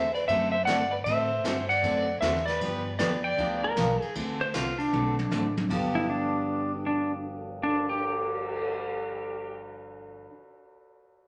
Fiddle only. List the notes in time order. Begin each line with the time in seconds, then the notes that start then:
Already playing: C5
0.14 B4
0.27 C5
0.53 C5
0.65 D5
0.91 B4
1.05 C5
1.69 D5
2.20 C5
2.46 B4
2.98 B4
3.24 D5